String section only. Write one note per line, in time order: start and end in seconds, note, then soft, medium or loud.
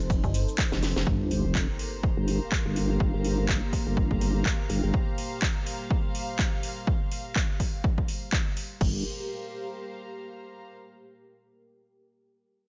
1.07 8.80 G4 medium
1.23 8.81 C5 medium
1.51 8.81 A#5 medium
2.45 8.81 F5 medium
8.81 10.71 G4 medium
8.89 10.70 C5 medium
8.97 10.70 F5 medium
9.03 10.71 A#5 medium